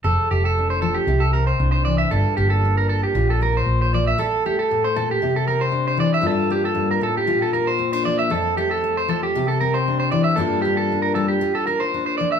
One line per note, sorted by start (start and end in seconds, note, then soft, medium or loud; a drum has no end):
0.04 0.16 F1 medium
0.04 1.08 F2 medium
0.04 0.29 A4 medium
0.04 1.05 A4 medium
0.31 0.98 F1 medium
0.31 1.06 A3 soft
0.31 0.43 G4 medium
0.45 0.69 A4 medium
0.58 1.10 D4 soft
0.70 0.81 C5 medium
0.82 1.05 F3 medium
0.82 0.95 A4 medium
0.94 1.19 G4 medium
1.07 1.52 C2 medium
1.07 1.85 C3 medium
1.07 2.08 G4 medium
1.20 1.32 A4 medium
1.33 2.09 C4 soft
1.33 1.46 A#4 medium
1.47 1.71 C5 medium
1.60 2.04 C2 medium
1.60 2.65 D4 soft
1.72 1.84 C5 medium
1.85 2.08 E3 medium
1.85 1.98 D5 medium
1.98 2.10 E5 medium
2.11 2.23 G1 medium
2.11 3.12 G2 medium
2.11 3.15 F4 medium
2.11 2.36 A4 medium
2.37 3.05 G1 medium
2.37 3.12 A#3 medium
2.37 2.50 G4 medium
2.50 2.75 A4 medium
2.65 3.13 D4 soft
2.77 2.89 A#4 medium
2.89 3.02 A4 medium
3.03 3.28 G4 medium
3.15 3.59 A#1 medium
3.15 4.18 A#2 medium
3.15 4.19 F4 medium
3.30 3.41 A4 medium
3.41 4.16 A#3 soft
3.41 3.55 A#4 medium
3.57 3.80 C5 medium
3.66 4.11 A#1 medium
3.82 3.93 C5 medium
3.93 4.16 F3 medium
3.93 4.06 D5 medium
4.07 4.18 E5 medium
4.18 4.43 A4 medium
4.18 5.19 A4 medium
4.18 muted steel-string acoustic guitar stroke medium
4.46 5.19 A3 medium
4.46 4.58 G4 medium
4.59 4.83 A4 medium
4.71 4.96 A2 medium
4.84 4.95 C5 medium
4.96 5.22 A#2 medium
4.96 5.09 A4 medium
5.11 5.35 G4 medium
5.22 5.99 C3 medium
5.22 6.22 G4 medium
5.36 5.47 A4 medium
5.48 6.22 C4 soft
5.48 5.60 A#4 medium
5.61 5.86 C5 medium
5.72 7.78 D4 medium
5.88 5.99 C5 medium
5.97 6.21 E3 medium
5.97 6.13 D5 medium
6.14 6.25 E5 medium
6.22 6.73 G2 medium
6.22 7.27 F4 medium
6.27 6.50 A4 medium
6.50 7.25 A#3 medium
6.50 6.64 G4 medium
6.65 6.89 A4 medium
6.75 7.01 G2 medium
6.91 7.02 A#4 medium
7.01 7.28 A2 medium
7.01 7.16 A4 medium
7.17 7.41 G4 medium
7.27 8.31 A#2 medium
7.27 8.31 F4 medium
7.42 7.53 A4 medium
7.53 8.28 A#3 medium
7.53 7.67 A#4 medium
7.67 7.92 C5 medium
7.79 7.93 C4 medium
7.93 8.31 D4 medium
7.93 8.05 C5 medium
8.05 8.28 F3 medium
8.05 8.18 D5 medium
8.19 8.30 E5 medium
8.30 9.34 F2 medium
8.30 8.56 A4 medium
8.30 9.32 A4 medium
8.57 9.32 A3 medium
8.57 8.70 G4 medium
8.71 8.95 A4 medium
8.84 muted steel-string acoustic guitar stroke medium
8.97 9.08 C5 medium
9.08 9.31 F3 medium
9.08 9.22 A4 medium
9.23 9.47 G4 medium
9.35 10.12 C3 medium
9.35 10.36 G4 medium
9.48 9.60 A4 medium
9.60 10.35 C4 medium
9.60 9.73 A#4 medium
9.74 9.99 C5 medium
9.88 10.39 D4 medium
10.00 10.11 C5 medium
10.12 10.35 E3 medium
10.12 10.24 D5 medium
10.24 10.36 E5 medium
10.36 11.38 G2 medium
10.36 11.14 G3 medium
10.36 10.64 A#3 medium
10.36 10.92 D4 medium
10.36 11.41 F4 medium
10.36 10.61 A4 medium
10.62 11.39 A#3 medium
10.62 10.76 G4 medium
10.77 11.02 A4 medium
10.92 11.94 D4 medium
11.02 11.14 A#4 medium
11.15 11.38 G3 medium
11.15 11.28 A4 medium
11.28 11.53 G4 medium
11.41 12.40 F4 medium
11.41 muted steel-string acoustic guitar stroke medium
11.55 11.66 A4 medium
11.67 12.40 A#3 medium
11.67 11.80 A#4 medium
11.80 12.05 C5 medium
11.94 12.40 D4 medium
12.06 12.17 C5 medium
12.18 12.40 F3 medium
12.18 12.31 D5 medium
12.32 12.40 E5 medium